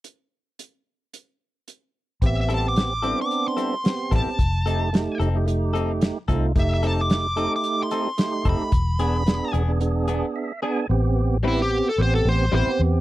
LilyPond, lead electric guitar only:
\new Staff \with { instrumentName = "Lead electric guitar" } { \time 4/4 \key a \minor \tempo 4 = 111 r1 | e''16 e''16 a''16 d'''4 d'''8 c'''4~ c'''16 a''8~ | a''4. r2 r8 | e''16 e''16 a''16 d'''4 d'''8 c'''4~ c'''16 b''8~ |
b''4. r2 r8 | r4 e'16 g'8 a'16 c''16 a'16 c''8 c''8 r8 | }